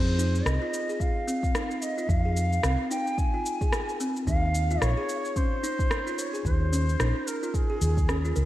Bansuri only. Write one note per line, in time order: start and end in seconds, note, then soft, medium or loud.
0.00 0.47 C5 medium
0.46 1.02 D#5 loud
1.00 1.83 F5 loud
1.82 2.11 D#5 medium
2.09 2.90 F5 loud
2.91 3.20 G5 loud
3.18 4.00 G#5 loud
4.28 4.83 F5 loud
4.82 5.38 C#5 loud
5.37 6.19 C5 loud
6.18 6.45 C#5 medium
6.46 7.28 C5 loud
7.27 7.56 A#4 medium
7.54 8.36 G#4 medium